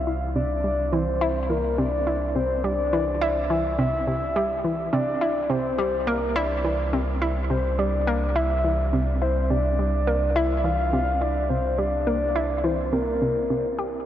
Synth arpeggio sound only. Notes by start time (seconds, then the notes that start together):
0.07 E4
0.36 C3
0.64 G3
0.93 E3
1.21 E4
1.50 E3
1.78 C3
2.07 E4
2.36 C3
2.64 G3
2.93 E3
3.21 E4
3.50 E3
3.79 C3
4.07 C3
4.36 G3
4.64 E3
4.93 C3
5.21 E4
5.50 C3
5.79 G3
6.07 A#3
6.36 E4
6.64 E3
6.93 C3
7.22 E4
7.50 C3
7.79 G3
8.07 A#3
8.36 E4
8.64 E3
8.93 C3
9.21 E4
9.50 C3
9.79 G3
10.07 A#3
10.36 E4
10.64 E3
10.93 C3
11.21 E4
11.50 C3
11.79 G3
12.07 A#3
12.36 E4
12.64 E3
12.93 C3
13.22 C3
13.50 C3
13.79 G4